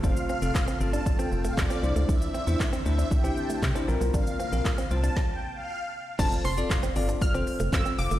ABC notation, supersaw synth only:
X:1
M:4/4
L:1/16
Q:1/4=117
K:F
V:1 name="Supersaw synth"
f2 f2 z2 a2 z g z f d3 z | e2 e2 z2 e2 g2 a z4 z | f2 f2 z2 a2 z g z f2 z3 | z16 |]